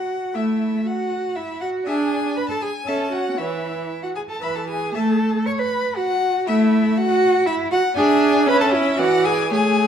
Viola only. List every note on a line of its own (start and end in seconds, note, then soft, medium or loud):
0.35 0.77 A3 medium
1.86 2.28 D4 medium
2.86 3.29 C#4 medium
3.37 3.81 E3 medium
4.42 4.86 E3 medium
4.95 5.38 A3 medium
6.47 6.89 A3 medium
7.96 8.48 D4 medium
8.46 9.00 C#4 medium
8.99 9.53 E3 medium
9.51 9.87 A3 medium